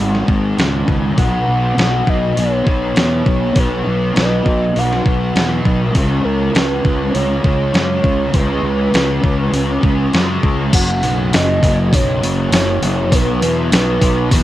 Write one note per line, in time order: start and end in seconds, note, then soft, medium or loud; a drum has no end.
0.00 0.23 G#1 medium
0.00 0.55 G#2 medium
0.00 0.28 D#3 loud
0.00 0.26 G#3 loud
0.00 0.28 F#5 loud
0.15 snare soft
0.27 0.52 G#1 medium
0.27 0.57 D#3 medium
0.27 0.58 G#3 medium
0.27 kick medium
0.57 0.83 C#2 medium
0.57 1.15 G#2 medium
0.57 1.16 D#3 medium
0.57 1.16 G#3 medium
0.57 snare loud
0.57 open hi-hat medium
0.88 1.12 C#2 medium
0.88 kick medium
1.17 1.42 B1 medium
1.17 1.76 B2 medium
1.17 1.77 F#3 medium
1.17 1.78 B3 loud
1.17 2.11 F#5 loud
1.17 kick loud
1.17 open hi-hat medium
1.48 1.72 B1 medium
1.76 2.01 B1 medium
1.76 2.36 B2 medium
1.76 2.37 F#3 medium
1.76 2.39 B3 medium
1.76 snare loud
1.76 open hi-hat medium
2.07 2.31 B1 medium
2.07 2.40 D#5 loud
2.07 kick medium
2.37 2.61 B1 medium
2.37 2.94 B2 medium
2.37 2.67 F#3 loud
2.37 2.66 B3 loud
2.37 3.61 C#5 loud
2.37 open hi-hat medium
2.67 2.91 B1 medium
2.67 2.96 F#3 medium
2.67 2.97 B3 medium
2.67 kick medium
2.95 3.21 E2 medium
2.95 3.54 B2 medium
2.95 3.55 F#3 medium
2.95 3.57 B3 medium
2.95 snare loud
2.95 open hi-hat medium
3.26 3.51 B1 medium
3.26 kick medium
3.56 3.80 B1 medium
3.56 4.15 B2 loud
3.56 4.16 F#3 medium
3.56 4.18 B3 loud
3.56 4.21 B4 loud
3.56 kick loud
3.56 open hi-hat medium
3.87 4.11 B1 medium
4.16 4.40 B1 medium
4.16 4.74 B2 medium
4.16 4.76 F#3 medium
4.16 4.77 B3 medium
4.16 4.80 D#5 loud
4.16 snare loud
4.16 open hi-hat medium
4.46 4.70 B1 medium
4.46 kick medium
4.75 5.00 B1 medium
4.75 5.34 B2 medium
4.75 5.06 F#3 loud
4.75 5.05 B3 loud
4.75 5.67 F#5 medium
4.75 open hi-hat medium
4.92 snare soft
5.05 5.30 B1 medium
5.05 5.35 F#3 medium
5.05 5.37 B3 medium
5.05 kick medium
5.35 5.60 E2 medium
5.35 5.93 B2 medium
5.35 5.94 F#3 medium
5.35 5.96 B3 medium
5.35 snare loud
5.35 open hi-hat medium
5.65 5.89 B1 medium
5.65 kick medium
5.94 6.19 C#2 medium
5.94 6.54 C#3 loud
5.94 6.55 G#3 loud
5.94 6.56 C#4 loud
5.94 kick loud
5.94 open hi-hat medium
6.23 6.49 C#2 medium
6.23 6.56 A#4 medium
6.54 6.79 C#2 medium
6.54 7.12 C#3 medium
6.54 7.14 G#3 medium
6.54 7.16 C#4 medium
6.54 7.16 B4 loud
6.54 snare loud
6.54 open hi-hat medium
6.85 7.09 C#2 medium
6.85 kick medium
7.14 7.39 C#2 loud
7.14 7.72 C#3 medium
7.14 7.45 G#3 loud
7.14 7.43 C#4 loud
7.14 7.74 C#5 loud
7.14 open hi-hat medium
7.44 7.69 C#2 medium
7.44 7.73 G#3 medium
7.44 7.76 C#4 medium
7.44 kick loud
7.73 7.98 F#2 medium
7.73 8.33 C#3 medium
7.73 8.34 G#3 medium
7.73 8.35 C#4 medium
7.73 8.36 C#5 loud
7.73 snare loud
7.73 open hi-hat medium
8.04 8.29 C#2 medium
8.04 kick medium
8.34 8.58 C#2 medium
8.34 8.92 C#3 loud
8.34 8.94 G#3 medium
8.34 8.95 C#4 loud
8.34 10.14 B4 loud
8.34 kick loud
8.34 open hi-hat medium
8.63 8.88 C#2 medium
8.93 9.18 C#2 medium
8.93 9.52 C#3 medium
8.93 9.53 G#3 medium
8.93 9.54 C#4 medium
8.93 snare loud
8.93 open hi-hat medium
9.24 9.48 C#2 medium
9.24 kick medium
9.52 9.77 C#2 medium
9.52 10.12 C#3 medium
9.52 9.84 G#3 medium
9.52 9.82 C#4 loud
9.52 open hi-hat medium
9.83 10.08 C#2 medium
9.83 10.13 G#3 medium
9.83 10.14 C#4 medium
9.83 kick medium
10.13 10.38 F#2 medium
10.13 10.71 C#3 medium
10.13 10.72 G#3 medium
10.13 10.72 C#4 medium
10.13 snare loud
10.13 open hi-hat medium
10.43 10.68 C#2 medium
10.43 kick medium
10.72 11.01 F#1 medium
10.72 11.31 F#2 loud
10.72 11.03 C#3 loud
10.72 11.02 F#3 loud
10.72 11.35 F#5 loud
10.72 kick loud
10.72 open hi-hat medium
10.72 crash loud
11.02 11.31 B1 medium
11.02 11.32 C#3 medium
11.02 11.34 F#3 medium
11.02 open hi-hat medium
11.32 11.61 F#1 loud
11.32 11.92 F#2 medium
11.32 11.63 C#3 medium
11.32 11.62 F#3 medium
11.32 11.96 D#5 loud
11.32 snare loud
11.32 open hi-hat medium
11.62 11.91 F#1 medium
11.62 11.93 C#3 medium
11.62 11.94 F#3 medium
11.62 kick medium
11.62 open hi-hat medium
11.93 12.20 B1 loud
11.93 12.51 F#2 loud
11.93 12.23 C#3 medium
11.93 12.21 F#3 loud
11.93 12.52 C#5 loud
11.93 kick loud
11.93 open hi-hat medium
12.22 12.51 F#1 medium
12.22 12.52 C#3 medium
12.22 12.53 F#3 medium
12.22 open hi-hat medium
12.52 12.80 F#1 medium
12.52 13.10 F#2 medium
12.52 12.83 C#3 medium
12.52 12.81 F#3 medium
12.52 13.16 C#5 medium
12.52 snare loud
12.52 open hi-hat medium
12.82 13.10 F#1 medium
12.82 13.11 C#3 medium
12.82 13.10 F#3 medium
12.82 open hi-hat medium
13.12 13.40 B1 medium
13.12 13.70 B2 medium
13.12 13.43 F#3 loud
13.12 13.42 B3 loud
13.12 13.42 B4 medium
13.12 kick loud
13.12 open hi-hat medium
13.41 13.69 E2 medium
13.41 13.71 F#3 medium
13.41 13.73 B3 medium
13.41 14.28 B4 medium
13.41 open hi-hat medium
13.71 14.00 B1 medium
13.71 14.31 B2 medium
13.71 14.03 F#3 medium
13.71 14.01 B3 medium
13.71 snare loud
13.71 open hi-hat medium
14.01 14.29 B1 medium
14.01 14.32 F#3 medium
14.01 14.33 B3 medium
14.01 kick medium
14.01 open hi-hat medium
14.31 14.43 E2 medium
14.31 14.43 B2 loud
14.31 14.43 F#3 loud
14.31 14.43 B3 loud
14.31 kick loud
14.31 open hi-hat medium